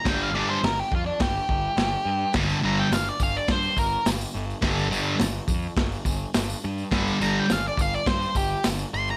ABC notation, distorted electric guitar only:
X:1
M:4/4
L:1/8
Q:1/4=105
K:Gm
V:1 name="Distorted electric guitar" clef=bass
[G,,D,G,] [G,,D,G,] z6 | [G,,D,G,] [G,,D,G,] z6 | [G,,D,G,] [G,,D,G,] z6 | [G,,D,G,] [G,,D,G,] z6 |]